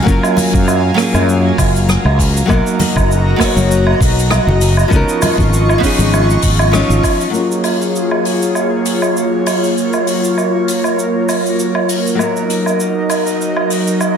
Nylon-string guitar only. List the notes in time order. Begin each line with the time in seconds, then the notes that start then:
0.02 F#3 A#3 C#4
0.08 F4 A#4
0.94 F#3 A#3
0.98 C#4 F4 G#4
2.46 F#3 A#3 B3
2.51 D#4 A#4
3.36 F#3 A#3 B3
3.42 D#4 C#5
4.88 F3 B3 C#4
4.94 D#4 A#4
5.78 F3 B3
5.82 C#4 D#4 G#4
6.71 F3 B3 C#4 D#4 F4
7.30 F#3 A#3 C#4
7.36 F4 G#4
12.15 F#3 A#3 B3
12.21 D#4 A#4